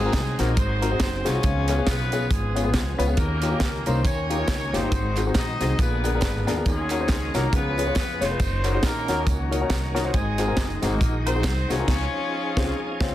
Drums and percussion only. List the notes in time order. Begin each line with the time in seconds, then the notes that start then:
0.13 kick, snare, clap, closed hi-hat, tambourine
0.39 snare, closed hi-hat, tambourine
0.57 kick, closed hi-hat, tambourine
0.82 closed hi-hat, tambourine
1.00 kick, snare, clap, closed hi-hat, tambourine
1.25 snare, closed hi-hat, tambourine
1.43 kick, closed hi-hat, tambourine
1.68 clap, closed hi-hat, tambourine
1.87 kick, snare, clap, closed hi-hat, tambourine
2.12 closed hi-hat, tambourine
2.31 kick, closed hi-hat, tambourine
2.57 closed hi-hat, tambourine
2.74 kick, snare, clap, closed hi-hat, tambourine
3.00 closed hi-hat, tambourine
3.17 kick, closed hi-hat, tambourine
3.42 clap, closed hi-hat, tambourine
3.60 kick, snare, clap, closed hi-hat, tambourine
3.86 closed hi-hat, tambourine
4.05 kick, closed hi-hat, tambourine
4.30 closed hi-hat, tambourine
4.48 kick, snare, clap, closed hi-hat, tambourine
4.74 snare, closed hi-hat, tambourine
4.92 kick, closed hi-hat, tambourine
5.17 clap, closed hi-hat, tambourine
5.35 kick, snare, clap, closed hi-hat, tambourine
5.61 snare, closed hi-hat, tambourine
5.79 kick, closed hi-hat, tambourine
6.04 closed hi-hat, tambourine
6.22 kick, snare, clap, closed hi-hat, tambourine
6.47 snare, closed hi-hat, tambourine
6.65 kick, closed hi-hat, tambourine
6.90 clap, closed hi-hat, tambourine
7.09 kick, snare, clap, closed hi-hat, tambourine
7.34 snare, closed hi-hat, tambourine
7.53 kick, closed hi-hat, tambourine
7.78 closed hi-hat, tambourine
7.96 kick, snare, clap, closed hi-hat, tambourine
8.21 snare, closed hi-hat, tambourine
8.40 kick, closed hi-hat, tambourine
8.64 clap, closed hi-hat, tambourine
8.83 kick, snare, clap, closed hi-hat, tambourine
9.08 snare, closed hi-hat, tambourine
9.27 kick, closed hi-hat, tambourine
9.53 closed hi-hat, tambourine
9.70 kick, snare, clap, closed hi-hat, tambourine
9.96 snare, closed hi-hat, tambourine
10.14 kick, closed hi-hat, tambourine
10.38 clap, closed hi-hat, tambourine
10.57 kick, snare, clap, closed hi-hat, tambourine
10.82 snare, closed hi-hat, tambourine
11.01 kick, closed hi-hat, tambourine
11.27 closed hi-hat, tambourine
11.44 kick, snare, clap, closed hi-hat, tambourine
11.70 snare, closed hi-hat, tambourine
11.88 kick, snare, crash
12.57 kick, snare
13.01 kick, snare